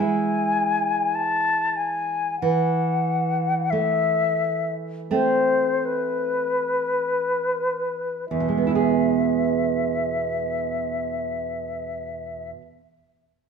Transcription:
0.00 2.37 E3 soft
0.00 2.37 G#3 soft
0.00 2.38 E4 soft
0.00 1.17 G#5 medium
1.15 1.78 A5 medium
1.77 2.40 G#5 medium
2.41 8.27 E3 soft
2.41 3.72 F#5 soft
3.70 5.10 A3 soft
3.70 4.74 E5 medium
5.11 8.26 A3 soft
5.11 8.26 C4 soft
5.11 5.87 C5 soft
5.86 8.29 B4 medium
8.29 12.52 E2 soft
8.29 12.50 E5 soft
8.40 12.61 B2 soft
8.48 12.70 G#3 soft
8.58 12.79 B3 soft
8.67 8.75 E4 soft
8.75 12.96 G#4 soft

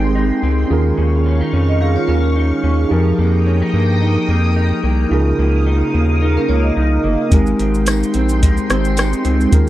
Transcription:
0.00 0.32 G#1 medium
0.00 2.00 G#3 medium
0.00 2.87 G#3 medium
0.00 0.42 C4 medium
0.00 0.65 C4 medium
0.00 0.15 D#4 medium
0.00 0.66 D#4 medium
0.00 0.67 G4 medium
0.00 1.00 G4 medium
0.00 0.68 A#4 medium
0.00 0.69 G5 medium
0.00 0.69 C6 medium
0.15 1.00 D#4 medium
0.43 0.65 C#2 medium
0.43 0.77 C4 medium
0.68 0.93 D#2 loud
0.68 2.94 D#3 medium
0.68 2.04 C#4 medium
0.68 2.05 F4 medium
0.68 2.06 G#4 medium
0.68 2.89 F5 medium
0.68 2.89 C#6 medium
0.73 2.07 A#4 medium
0.97 1.42 D#2 medium
0.97 1.24 C#4 medium
1.25 1.41 C#4 medium
1.41 1.79 D#4 medium
1.53 1.97 F2 medium
1.53 2.07 C#4 medium
1.69 1.80 D#5 medium
1.80 2.35 D#4 medium
1.80 1.96 G#4 medium
1.80 1.96 F5 medium
1.96 2.08 F4 medium
1.96 2.08 C#5 medium
2.07 2.52 D#2 medium
2.07 2.90 C#4 medium
2.07 2.62 C#4 medium
2.07 2.23 C#4 medium
2.07 2.91 F4 soft
2.07 2.91 G#4 soft
2.07 2.22 A#4 medium
2.07 2.92 C#5 medium
2.24 2.88 G#4 medium
2.36 3.46 D#4 medium
2.64 2.86 D#2 medium
2.64 2.97 C#4 medium
2.89 3.13 F2 loud
2.89 5.69 F3 medium
2.89 5.06 D#4 medium
2.89 5.07 G4 medium
2.89 5.08 G#4 medium
2.89 5.09 A#4 medium
2.89 5.09 G5 medium
2.89 5.09 A#5 medium
2.89 5.09 D#6 medium
2.94 5.09 A#4 medium
3.19 3.63 F2 loud
3.19 3.74 A#3 medium
3.47 3.62 C#4 medium
3.62 4.00 D#4 medium
3.73 4.18 G2 medium
3.73 4.29 A#3 medium
4.01 4.56 D#4 medium
4.28 4.73 F2 medium
4.28 4.83 A#3 medium
4.56 5.66 D#4 medium
4.84 5.06 C2 medium
4.84 5.39 A#3 medium
5.09 5.33 C#2 loud
5.09 7.32 C#3 medium
5.09 7.27 D#4 medium
5.09 7.27 F4 medium
5.09 7.28 G#4 medium
5.09 7.30 A#4 medium
5.09 7.30 F5 medium
5.09 7.30 D#6 medium
5.14 7.29 A#4 medium
5.39 5.83 C#2 loud
5.39 5.93 A#3 medium
5.66 6.21 D#4 medium
5.94 6.38 D#2 medium
5.94 6.49 A#3 medium
6.21 6.76 D#4 medium
6.21 6.36 G#4 medium
6.37 6.49 C#4 medium
6.37 6.49 A#4 medium
6.49 6.71 C#2 medium
6.49 7.03 A#3 medium
6.49 6.64 F4 medium
6.49 6.63 C#5 medium
6.63 7.28 D#5 medium
6.77 6.99 C2 medium
6.77 7.87 D#4 medium
7.04 7.16 G1 medium
7.04 7.38 A#3 medium
7.30 7.54 G#1 loud
7.30 9.69 G#3 medium
7.30 8.66 C4 medium
7.30 8.66 D#4 medium
7.30 8.67 G4 medium
7.30 9.50 G5 medium
7.30 9.50 C6 medium
7.30 kick medium
7.30 closed hi-hat medium
7.30 shaker medium
7.34 8.68 A#4 medium
7.47 shaker soft
7.59 8.04 G#1 loud
7.59 8.14 C4 medium
7.59 closed hi-hat medium
7.59 shaker soft
7.74 shaker soft
7.86 8.42 D#4 medium
7.86 cross-stick medium
7.86 closed hi-hat medium
7.86 tambourine medium
7.86 shaker medium
8.03 shaker medium
8.14 8.59 A#1 medium
8.14 8.69 C4 medium
8.14 closed hi-hat medium
8.14 shaker medium
8.29 shaker medium
8.43 8.97 D#4 medium
8.43 kick medium
8.43 closed hi-hat medium
8.43 shaker medium
8.57 shaker soft
8.69 9.14 G#1 medium
8.69 9.52 C4 medium
8.69 9.24 C4 medium
8.69 9.52 D#4 medium
8.69 9.53 G4 soft
8.69 9.53 C5 medium
8.69 cross-stick medium
8.69 closed hi-hat medium
8.69 shaker medium
8.85 shaker soft
8.97 9.69 D#4 medium
8.97 cross-stick medium
8.97 closed hi-hat medium
8.97 tambourine medium
8.97 shaker medium
9.13 shaker medium
9.25 9.47 C#2 medium
9.25 9.58 C4 medium
9.25 closed hi-hat medium
9.25 shaker medium
9.41 shaker soft
9.50 9.69 D#2 loud
9.50 9.69 D#3 medium
9.50 9.69 C#4 medium
9.50 9.69 F4 medium
9.50 9.69 G#4 medium
9.50 9.69 F5 medium
9.50 9.69 C#6 medium
9.50 kick loud
9.50 closed hi-hat medium
9.50 shaker medium
9.55 9.69 A#4 medium

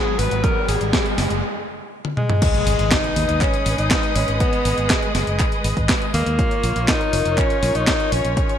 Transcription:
0.00 1.40 G#3 medium
0.00 1.40 B3 medium
0.00 0.20 G#4 loud
0.00 riser medium
0.19 0.30 G#1 loud
0.19 0.45 B4 medium
0.19 open hi-hat loud
0.31 0.42 G#1 medium
0.31 closed hi-hat medium
0.44 0.68 A#4 medium
0.44 kick loud
0.44 closed hi-hat medium
0.68 0.79 G#1 medium
0.68 1.14 G#4 medium
0.68 open hi-hat loud
0.81 0.92 G#1 medium
0.81 closed hi-hat medium
0.93 kick loud
0.93 snare loud
0.93 closed hi-hat medium
1.06 closed hi-hat soft
1.18 1.29 F#1 medium
1.18 snare medium
1.18 open hi-hat loud
1.30 1.41 F#1 medium
1.30 closed hi-hat soft
2.05 high tom medium
2.17 2.93 G#3 loud
2.17 mid tom medium
2.30 mid tom medium
2.42 6.35 G#3 medium
2.42 6.35 G#4 medium
2.42 6.35 B4 medium
2.42 6.35 D#5 medium
2.42 6.35 D#6 medium
2.42 kick loud
2.42 closed hi-hat loud
2.42 crash loud
2.42 impact medium
2.54 closed hi-hat soft
2.67 2.77 G#1 loud
2.67 open hi-hat loud
2.79 2.90 G#1 medium
2.79 closed hi-hat soft
2.92 3.43 D#4 loud
2.92 kick loud
2.92 snare loud
2.92 clap loud
2.92 closed hi-hat loud
3.04 closed hi-hat soft
3.16 3.27 D#2 loud
3.16 open hi-hat loud
3.29 3.39 D#2 medium
3.29 closed hi-hat soft
3.41 3.80 C#4 loud
3.41 kick loud
3.41 clap medium
3.41 closed hi-hat loud
3.54 closed hi-hat soft
3.66 3.77 G#1 loud
3.66 open hi-hat loud
3.78 3.89 G#1 medium
3.78 4.17 D#4 loud
3.78 closed hi-hat soft
3.91 kick loud
3.91 snare loud
3.91 clap loud
3.91 closed hi-hat loud
4.03 closed hi-hat soft
4.16 4.26 G#1 loud
4.16 4.40 C#4 loud
4.16 open hi-hat loud
4.28 4.39 G#1 medium
4.28 closed hi-hat soft
4.40 4.91 B3 loud
4.40 kick loud
4.40 closed hi-hat loud
4.53 closed hi-hat soft
4.65 4.76 G#1 medium
4.65 open hi-hat loud
4.78 4.88 G#1 medium
4.78 closed hi-hat soft
4.90 5.40 G#3 medium
4.90 kick loud
4.90 snare loud
4.90 clap loud
4.90 closed hi-hat loud
5.02 closed hi-hat soft
5.15 5.25 F#1 medium
5.15 snare medium
5.15 open hi-hat loud
5.27 5.38 F#1 medium
5.27 closed hi-hat soft
5.40 kick loud
5.40 clap medium
5.40 closed hi-hat medium
5.52 closed hi-hat soft
5.64 5.75 G#1 loud
5.64 open hi-hat loud
5.77 5.87 G#1 medium
5.77 kick medium
5.77 closed hi-hat soft
5.89 kick loud
5.89 snare loud
5.89 clap loud
5.89 closed hi-hat loud
6.02 closed hi-hat soft
6.14 6.25 D#2 loud
6.14 6.90 A#3 loud
6.14 open hi-hat loud
6.26 6.37 D#2 medium
6.26 closed hi-hat soft
6.39 8.35 F4 medium
6.39 8.35 A#4 medium
6.39 8.58 C#5 medium
6.39 kick loud
6.39 closed hi-hat medium
6.51 closed hi-hat soft
6.63 6.74 A#1 loud
6.63 open hi-hat loud
6.76 6.87 A#1 medium
6.76 closed hi-hat soft
6.88 7.39 D#4 loud
6.88 kick loud
6.88 snare loud
6.88 clap loud
6.88 closed hi-hat loud
7.01 closed hi-hat soft
7.13 7.24 F1 loud
7.13 open hi-hat loud
7.25 7.36 F1 medium
7.25 closed hi-hat soft
7.38 7.77 C#4 loud
7.38 kick loud
7.38 clap medium
7.38 closed hi-hat medium
7.50 closed hi-hat soft
7.63 7.73 A#1 medium
7.63 open hi-hat loud
7.75 7.86 A#1 medium
7.75 8.14 D#4 loud
7.75 closed hi-hat soft
7.87 kick loud
7.87 snare loud
7.87 clap loud
7.87 closed hi-hat loud
8.00 closed hi-hat soft
8.12 8.23 A#1 loud
8.12 8.37 C#4 loud
8.12 open hi-hat loud
8.25 8.35 A#1 medium
8.25 closed hi-hat soft
8.37 8.58 C#4 medium
8.37 8.58 F4 medium
8.37 8.58 G#4 medium
8.37 kick loud
8.37 closed hi-hat medium
8.49 closed hi-hat soft

